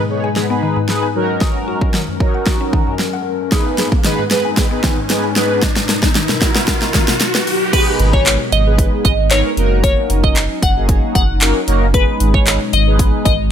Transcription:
Already playing: G#2 G#3 D#4 B4, riser
0.10 B3 D#4 G#4 C#5
0.24 G#5
0.36 B3 D#4 G#4 B4, snare
0.50 B3 D#4 G#4 B4
0.63 D#3
0.76 G#2
0.89 B3 D#4 G#4 B4, snare
1.03 G#5
1.15 F#2 F#3 C#4 D#4 F#4 A#4
1.41 D#6, kick, snare
1.68 F#4
1.81 C#4, kick
1.94 D#3, snare
2.08 F#2
2.20 F#3 C#4 D#4 F#4 A#4, kick
2.34 F#5
2.47 F#4, kick, snare
2.61 C#4
2.73 D#3, kick
2.87 F#2
2.99 snare
3.13 F#5
3.51 G#2 G#3 B3 D#4 G#4 B4 D#6, kick, snare, closed hi-hat
3.78 G#4, snare, closed hi-hat
3.92 B3, kick
4.04 D#3 B3 D#4 G#4 B4, snare, closed hi-hat
4.19 G#2
4.30 B3 D#4 G#4 B4, snare, closed hi-hat
4.45 G#5
4.57 B3 D#4 G#4 B4, kick, snare, closed hi-hat
4.71 B3 D#4 G#4 B4
4.83 D#3, kick, snare, closed hi-hat
4.97 G#2
5.09 B3 D#4 G#4 B4, snare, closed hi-hat
5.24 G#5
5.36 B3 D#4 G#4 B4, snare, closed hi-hat
5.62 B2 F#3 A#4 D#5, kick, snare, closed hi-hat
5.76 snare, closed hi-hat
5.89 A#4, snare, closed hi-hat
6.03 B3, kick, snare
6.15 D#3, snare, closed hi-hat
6.29 B2, snare
6.41 B3 D#4 F#4 A#4, kick, snare, closed hi-hat
6.55 B4, snare
6.68 A#4, kick, snare, closed hi-hat
6.82 B3, snare
6.94 D#3, kick, snare, closed hi-hat
7.08 B2, snare
7.20 snare, closed hi-hat
7.35 B4, snare, closed hi-hat
7.47 open hi-hat
7.73 G#3 B3 D#4 G#4 B4, kick, closed hi-hat, crash
8.00 G#1, closed hi-hat
8.13 C#5, kick
8.26 clap, closed hi-hat
8.52 G#1 D#5, closed hi-hat
8.66 G#3 B3 D#4 G#4 B4
8.78 kick, closed hi-hat
9.05 G#1 D#5, kick, closed hi-hat
9.31 G#3 B3 D#4 G#4 A#4 C#5, clap, closed hi-hat
9.57 F#1 F#3 A#3 C#4 D#4 F#4 A#4, closed hi-hat
9.84 C#5, kick, closed hi-hat
10.10 F#1, closed hi-hat
10.24 D#5, kick
10.36 clap, closed hi-hat
10.63 F#1 F#5, kick, closed hi-hat
10.76 A#3 C#4 D#4 F#4 G#4
10.89 kick, closed hi-hat
11.15 F#1 F#5, kick, closed hi-hat
11.41 A#3 C#4 D#4 F#4 A#4, clap, closed hi-hat
11.67 F#1 A#3 C#4 D#4 F#4 A#4, closed hi-hat
11.93 B2 G#3 B3 D#4 G#4 B4, kick, closed hi-hat
12.20 G#1, closed hi-hat
12.34 C#5, kick
12.47 clap, closed hi-hat
12.73 G#1 D#5, closed hi-hat
12.87 G#3 B3 D#4 G#4 B4
12.99 kick, closed hi-hat
13.25 G#1 D#5, kick, closed hi-hat

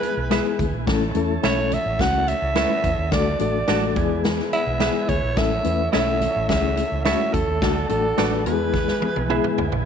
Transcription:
Already playing: E3 G#3 B3 E4 G#4 B4
0.03 closed hi-hat, high conga
0.17 B1
0.30 G#3 B3 E4 G#4 B4 E5, snare, closed hi-hat
0.45 high conga
0.59 D2, kick, closed hi-hat, muted conga, high conga, low conga
0.73 A#1
0.86 A1 A3 C#4 E4 A4, kick, snare, closed hi-hat, muted conga
1.15 E2 A3 C#4 E4 A4, closed hi-hat, muted conga, high conga
1.42 B1 A3 C#4 E4 A4 C#5 E5, snare, closed hi-hat
1.58 high conga
1.72 E5, closed hi-hat, high conga, low conga
1.86 A1
1.98 C#2 A3 C#4 E4 F#4 F#5, kick, snare, closed hi-hat, low conga
2.28 E5, closed hi-hat, high conga
2.42 C#2
2.55 A3 C#4 E4 A4 B4 C#5 E5, snare, closed hi-hat
2.70 high conga
2.84 E2, kick, closed hi-hat
2.98 D#2
3.11 D2 F#3 A3 D4 F#4 A4 D5, kick, snare, closed hi-hat
3.39 A1 A3 D4 F#4 A4 D5, closed hi-hat, high conga
3.68 A1 A3 D4 F#4 A4 D5, snare, closed hi-hat
3.82 high conga
3.95 E2 E3 G#3 B3 E4 G#4, kick, closed hi-hat, high conga, low conga
4.24 snare, closed hi-hat, muted conga, low conga
4.39 snare
4.53 E5, closed hi-hat, high conga
4.67 B1
4.79 G#3 B3 E4 G#4 B4 E5, snare, closed hi-hat
4.95 high conga
5.09 D2 C#5, kick, closed hi-hat
5.23 A#1
5.35 A1 A3 C#4 E4 A4 E5, kick, snare, closed hi-hat, muted conga
5.63 E2 A3 C#4 E4 B4, closed hi-hat, muted conga, high conga
5.92 B1 A3 C#4 E4 A4 C#5 E5, snare, closed hi-hat
6.07 high conga
6.21 closed hi-hat, muted conga, high conga, low conga
6.36 A1
6.48 C#2 A3 C#4 E4 G#4 E5, kick, snare, closed hi-hat, low conga
6.77 closed hi-hat, muted conga, high conga
6.92 C#2
7.05 A3 C#4 E4 F#4 A4 C#5 E5, snare, closed hi-hat
7.20 high conga
7.33 E2 A4, kick, closed hi-hat
7.48 D#2
7.61 D2 F#3 A3 D4 F#4 A4, kick, snare, closed hi-hat
7.89 A1 A3 D4 F#4 A4, closed hi-hat, high conga
8.17 A1 A3 D4 F#4 A4 B4 D5, snare, closed hi-hat
8.33 high conga
8.45 E2 E3 G#3 B3 E4 F#4 G#4 B4, closed hi-hat, high conga, low conga
8.53 G#4
8.74 kick, snare, muted conga, low conga
8.88 snare
9.02 high tom, muted conga, high conga
9.16 B1, high tom
9.29 G#3 B3 E4 G#4 B4 E5, mid tom
9.44 mid tom, high conga
9.58 D2, floor tom, muted conga
9.72 A#1, floor tom

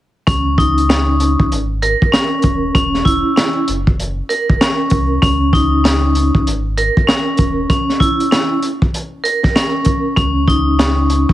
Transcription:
0.27 C#2 C#4, kick, closed hi-hat
0.58 D#4, kick, closed hi-hat
0.78 closed hi-hat
0.89 C#4, snare, closed hi-hat
1.20 closed hi-hat
1.40 C2, kick
1.52 G#1, closed hi-hat
1.82 A#4, closed hi-hat
2.02 G#1, kick
2.12 C#4, snare, closed hi-hat
2.42 D#1, kick, closed hi-hat
2.75 E1 C#4, kick, closed hi-hat
2.94 snare
3.05 E1 E4, kick, closed hi-hat
3.36 C#4, snare, closed hi-hat
3.68 F#1, closed hi-hat
3.87 kick
4.00 closed hi-hat
4.29 A#4, closed hi-hat
4.50 F1, kick
4.61 C#4, snare, closed hi-hat
4.90 C2, kick, closed hi-hat
5.22 C#2 C#4, kick, closed hi-hat
5.53 D#4, kick, closed hi-hat
5.84 C#4, snare, closed hi-hat
6.15 closed hi-hat
6.35 C2, kick
6.47 G#1, closed hi-hat
6.78 A#4, closed hi-hat
6.97 G#1, kick
7.07 C#4, snare, closed hi-hat
7.37 D#1, kick, closed hi-hat
7.70 C#4, kick, closed hi-hat
7.89 snare
8.00 E4, kick, closed hi-hat
8.20 closed hi-hat
8.31 C#4, snare, closed hi-hat
8.63 closed hi-hat
8.82 kick
8.94 closed hi-hat
9.24 A#4, closed hi-hat
9.43 kick, snare
9.56 C#4, snare, closed hi-hat
9.85 kick, closed hi-hat
10.16 C#2 C#4, kick, closed hi-hat
10.48 D#4, kick, closed hi-hat
10.79 C#4, snare, closed hi-hat
11.10 closed hi-hat
11.29 C2, kick

